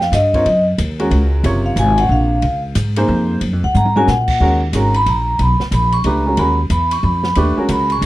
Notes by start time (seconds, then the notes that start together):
Already playing: F2
0.01 F5, snare
0.12 G2 D#5, snare, hi-hat pedal, ride
0.34 C4 F4 A#4 C#5, kick, ride
0.45 F#2, ride
0.78 D#2, hi-hat pedal, ride
0.99 G#3 C#4 F#4 A#4, ride
1.11 C#2, ride
1.44 F#1 C3 F4 A#4 C#5, ride
1.66 F5
1.76 G#1 G#5, hi-hat pedal, ride
1.98 F#5, ride
2.09 A#1 F5
2.42 C#2, ride
2.75 G#2, hi-hat pedal, ride
2.96 A#3 D#4 G#4 C5, ride
3.08 F2
3.41 F#2, ride
3.53 F2
3.64 C#2 F#5
3.74 G#2 A#5, hi-hat pedal, high tom
3.85 high tom
3.96 G#3 C#4 F#4 A#4 G#5, high tom
4.07 A#2 F#5, snare, hi-hat pedal
4.28 kick, crash
4.40 D#2 G#3 C#4 F#4 A#4
4.73 G#1 G#3 C#4 F#4 A#4 A#5, hi-hat pedal, ride
4.94 B5, ride
5.06 A#1 A#5, ride
5.39 B1 B5, ride
5.60 muted upright bass stroke, snare
5.71 A#1 B5, hi-hat pedal, ride
5.92 C#6, ride
6.04 C#2 A3 D4 G4 B4 A#5, ride
6.26 G#3 C#4 F#4 A#4
6.37 D#2 G#3 C#4 F#4 A#4 B5, ride
6.70 E2 B5, hi-hat pedal, ride
6.91 C#6, ride
7.03 F2 B5
7.23 snare
7.35 D#2 A3 D4 G4 B4 C#6, ride
7.57 G#3 C#4 F#4 A#4, muted upright bass stroke
7.69 C#2 B5, hi-hat pedal, ride
7.90 C#6, ride
8.02 B1, hi-hat pedal, ride